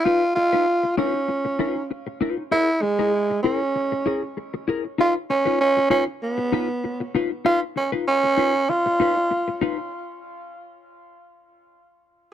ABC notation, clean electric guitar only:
X:1
M:4/4
L:1/16
Q:1/4=97
K:Dbmix
V:1 name="Clean electric guitar"
[EFc] z2 [EFc] z2 [EFc] z3 [EFc] z3 [EFc] z | [_FAB] z2 [FAB] z2 [FAB] z3 [FAB] z3 [FAB] z | [EFc] z2 [EFc] z2 [EFc] z3 [EFc] z3 [EFc] z | [EFc] z2 [EFc] z2 [EFc] z3 [EFc] z3 [EFc] z |
z16 |]